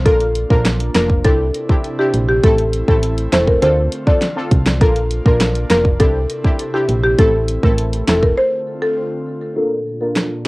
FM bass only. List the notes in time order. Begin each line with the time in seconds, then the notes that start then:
0.06 A#1
0.50 A#1
0.95 F1
1.25 C2
2.14 A#1
2.43 A1
2.88 A1
3.33 E1
3.62 D2
4.51 C2
4.81 A#1
5.26 A#1
5.70 F1
6.00 C2
6.89 A#1
7.19 A1
7.63 A1
8.08 E1